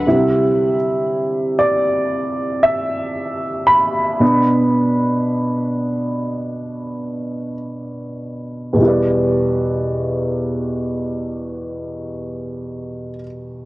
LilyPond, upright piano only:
<<
  \new Staff \with { instrumentName = "Upright piano" } { \time 4/4 \key e \minor \tempo 4 = 53 e''4. d''4 e''4 b''8~ | b''2. r4 | r1 | }
  \new Staff \with { instrumentName = "Upright piano" } { \time 4/4 \key e \minor <c g e'>8 r2. r8 | <b, b d'>1 | <e, b, g e' b' d''>1 | }
>>